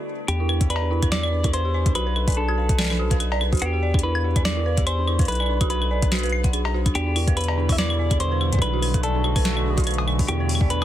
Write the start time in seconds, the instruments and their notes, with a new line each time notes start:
Already playing: ambient pad D3 A3 B3 F#4
0.28 analog synth bass E2, synth bell D4, clean electric guitar G4, closed hi-hat, claves
0.40 synth bell E4
0.49 synth bell B4, claves
0.61 synth bell G4, kick, closed hi-hat
0.70 clean electric guitar B4, synth bell D5, closed hi-hat, claves
0.76 cowbell
0.82 synth bell D4
0.91 synth bell E4
1.02 synth bell B4, kick, closed hi-hat, claves
1.12 synth bell G4, clean electric guitar D5, snare, closed hi-hat
1.23 synth bell D5, claves
1.32 synth bell D4
1.44 synth bell E4, kick, closed hi-hat, claves
1.53 synth bell B4, clean electric guitar C5, closed hi-hat
1.65 synth bell G4
1.74 synth bell D5
1.86 synth bell D4, kick, closed hi-hat
1.95 analog synth bass B1, synth bell F#4, clean electric guitar B4, closed hi-hat, claves
2.07 synth bell B4
2.16 synth bell A4, claves
2.28 synth bell D5, kick, closed hi-hat
2.30 closed hi-hat
2.32 closed hi-hat
2.34 synth bell D4, clean electric guitar A4, closed hi-hat
2.48 synth bell F#4, claves
2.58 synth bell B4
2.69 synth bell A4, kick, closed hi-hat
2.78 synth bell D5, snare, closed hi-hat, claves
2.81 snare
2.84 snare
2.87 synth bell D4, snare
2.90 snare, claves
2.92 snare
2.95 snare
2.97 synth bell F#4, snare
3.11 synth bell B4, kick, closed hi-hat
3.20 synth bell A4, closed hi-hat, claves
3.32 synth bell D5, cowbell
3.41 synth bell D4, claves
3.53 synth bell F#4, kick, closed hi-hat
3.55 closed hi-hat
3.57 closed hi-hat
3.59 analog synth bass E2, clean electric guitar G4, closed hi-hat
3.62 synth bell B4, closed hi-hat, claves
3.73 synth bell G4
3.83 synth bell D5
3.94 synth bell D4, kick, claves
3.99 closed hi-hat
4.03 synth bell E4, clean electric guitar B4
4.15 synth bell B4, claves
4.24 synth bell G4
4.36 synth bell D5, kick, closed hi-hat, claves
4.45 synth bell D4, clean electric guitar D5, snare, closed hi-hat
4.57 synth bell E4
4.66 synth bell B4
4.77 synth bell G4, kick, closed hi-hat
4.87 clean electric guitar C5, synth bell D5, closed hi-hat, claves
4.98 synth bell D4
5.08 synth bell E4, claves
5.19 synth bell B4, kick, closed hi-hat
5.21 closed hi-hat
5.25 analog synth bass B1, synth bell A4, clean electric guitar B4, closed hi-hat
5.28 closed hi-hat
5.32 closed hi-hat
5.35 closed hi-hat
5.40 synth bell D5, claves
5.42 claves
5.46 synth bell D4, claves
5.61 synth bell F#4, kick, closed hi-hat, claves
5.70 clean electric guitar B4, synth bell B4, closed hi-hat
5.82 synth bell A4, claves
5.91 synth bell D5
6.02 synth bell D4, kick, closed hi-hat
6.12 synth bell F#4, snare, closed hi-hat, claves
6.16 closed hi-hat
6.19 closed hi-hat
6.23 synth bell B4, closed hi-hat
6.26 closed hi-hat
6.33 synth bell B4, claves
6.44 synth bell F#5, kick, closed hi-hat
6.53 synth bell D4, closed hi-hat, claves
6.65 synth bell D4, cowbell
6.74 synth bell F#4
6.86 synth bell D4, kick, closed hi-hat, claves
6.95 analog synth bass E2, ambient pad B2 D3 G3 E4, clean electric guitar G4, synth bell D5, closed hi-hat, claves
7.07 synth bell D4
7.16 synth bell E4, open hi-hat, claves
7.28 synth bell B4, kick, closed hi-hat
7.37 synth bell G4, clean electric guitar B4, closed hi-hat, claves
7.41 closed hi-hat
7.44 closed hi-hat
7.48 synth bell D5, cowbell
7.58 synth bell D4
7.69 synth bell E4, clean electric guitar E5, kick, open hi-hat, claves
7.78 synth bell B4, clean electric guitar D5, snare, closed hi-hat
7.90 synth bell G4, claves
7.99 synth bell D5
8.11 synth bell D4, kick, closed hi-hat, claves
8.20 synth bell E4, clean electric guitar C5, closed hi-hat
8.32 synth bell B4
8.41 synth bell G4, claves
8.53 synth bell D5, kick, closed hi-hat
8.55 kick
8.59 analog synth bass B1, ambient pad A3 F#4, synth bell D4, clean electric guitar B4, kick, closed hi-hat, claves
8.73 synth bell F#4
8.82 synth bell B4, open hi-hat, claves
8.94 synth bell A4, kick, closed hi-hat
9.03 clean electric guitar A4, synth bell D5, closed hi-hat
9.15 synth bell D4
9.24 synth bell F#4, claves
9.36 synth bell B4, kick, open hi-hat, claves
9.45 synth bell A4, snare, closed hi-hat
9.57 synth bell D5, claves
9.66 synth bell D4
9.78 synth bell F#4, kick, closed hi-hat
9.80 closed hi-hat
9.84 synth bell B4, closed hi-hat
9.87 closed hi-hat, claves
9.91 closed hi-hat
9.94 closed hi-hat
9.98 synth bell A4, cowbell
10.08 synth bell D5, claves
10.19 synth bell D4, kick, open hi-hat
10.28 analog synth bass E2, ambient pad G3 E4, synth bell E4, clean electric guitar G4, closed hi-hat, claves
10.40 synth bell B4
10.49 synth bell G4, open hi-hat
10.55 claves
10.61 synth bell D5, kick
10.70 synth bell D4, clean electric guitar B4, closed hi-hat